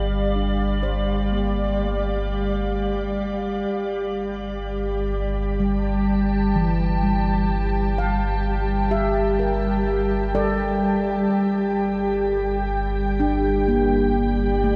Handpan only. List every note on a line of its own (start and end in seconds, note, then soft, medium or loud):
0.35 1.26 D4 soft
0.83 3.92 C5 medium
1.32 2.22 A#3 soft
1.80 4.88 A3 soft
5.60 6.74 G3 medium
6.56 7.46 E3 medium
7.03 10.12 G3 medium
7.98 8.89 F5 medium
8.91 9.83 G4 medium
8.91 10.54 E5 medium
9.39 10.31 A#4 soft
10.35 13.44 A4 medium
10.35 13.44 D5 medium
13.20 14.11 D4 medium
13.68 14.59 A#3 medium
14.64 14.76 A3 medium